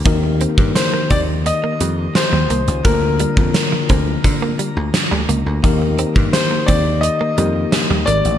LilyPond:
<<
  \new Staff \with { instrumentName = "Grand piano" } { \time 4/4 \key ees \major \tempo 4 = 86 r4 c''8 d''8 ees''4 c''4 | bes'2. r4 | r4 c''8 d''8 ees''4. d''8 | }
  \new Staff \with { instrumentName = "Tine electric piano" } { \time 4/4 \key ees \major <bes ees' ges' g' bes'>1 | <bes d' f' bes'>1 | <bes ees' g' bes'>2~ <bes ees' g' bes'>8 <bes ees' g' bes'>4. | }
  \new Staff \with { instrumentName = "Tine electric piano" } { \clef bass \time 4/4 \key ees \major ees4. r2 r8 | d4. r2 r8 | ees4. r2 r8 | }
  \new Staff \with { instrumentName = "Clean electric guitar" } { \time 4/4 \key ees \major ees'16 r16 c'16 r8 bes16 c'16 r8 bes16 g16 r8 g16 bes16 r16 | bes16 r16 g16 r8 f16 c'16 r8 bes16 g16 r8 g16 bes16 r16 | ees'16 r16 c'16 r8 bes16 c'16 r8 bes16 g16 r8 g16 bes16 r16 | }
  \new Staff \with { instrumentName = "Slap bass" } { \clef bass \time 4/4 \key ees \major ees,8. g,16 r8 ees,8. r16 f,8 r16 ees,16 c,16 des,16 | d,8. f,16 r8 d,8 d8 r16 d,16 r16 d,16 des,16 d,16 | ees,8. g,16 r8 ees,8. r16 f,8 r16 ees,16 aes,,16 a,,16 | }
  \new DrumStaff \with { instrumentName = "Drums" } \drummode { \time 4/4 <hh bd>8 hh16 bd16 <hh sn>8 <hh bd>8 hh8 hh8 <hh sn>8 hh16 hh16 | <hh bd>8 hh16 bd16 <hh sn>8 <hh bd>8 <hh bd>8 hh8 <hh sn>8 hh8 | <hh bd>8 hh16 bd16 <hh sn>8 <hh bd>8 hh8 hh8 <hh sn>8 hh16 hh16 | }
>>